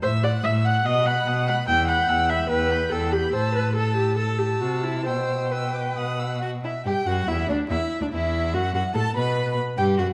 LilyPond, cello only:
\new Staff \with { instrumentName = "Cello" } { \clef bass \time 4/4 \key e \minor \tempo 4 = 144 a,4 a,4 b,4 b,4 | e,4 e,4 e,4 e,4 | a,2. c4 | b,2 b,4. r8 |
g,8 fis,8 e,8 d,8 e,8. d,16 e,4 | fis,8 fis,8 a,8 b,4 r8 g,8 fis,8 | }